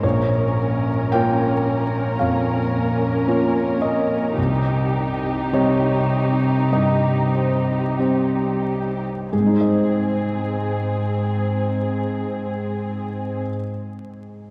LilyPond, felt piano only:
<<
  \new Staff \with { instrumentName = "Felt piano" } { \time 4/4 \key aes \major \tempo 4 = 49 des''4 g''4 f''4. ees''8~ | ees''4 des''4 ees''8 c''4. | <aes, aes ees' aes' c'' ees''>1 | }
  \new Staff \with { instrumentName = "Felt piano" } { \time 4/4 \key aes \major bes,,4 <bes f' des''>4 f,4 <bes f' des''>4 | c,4 <c g ees''>4 g,4 <g c' c''>4 | r1 | }
>>